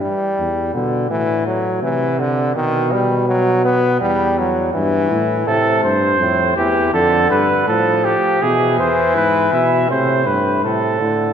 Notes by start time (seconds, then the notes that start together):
Already playing: G2
0.01 G3
0.38 E2
0.74 B2 D3
1.10 A2 E3
1.46 F#3
1.83 C3 E3
2.19 D3
2.56 B2 D#3
2.92 G3
3.28 F#3
3.65 B3
4.01 E2 G3
4.38 F#3
4.74 G2 E3
5.11 A2
5.47 A2 C3 A4
5.83 G2 C5
6.20 F2 A2
6.56 E2 E3 G4
6.93 F2 D3 A4
7.30 G2 B4
7.68 A2 F3 A4
8.04 G4
8.42 B2 E3 G#4
8.79 E2 C5
9.16 G#2 B4
9.53 B2 E5
9.89 A2 C3 C5
10.26 G2 B4
10.63 A2 C3 A4
11.00 A2 D3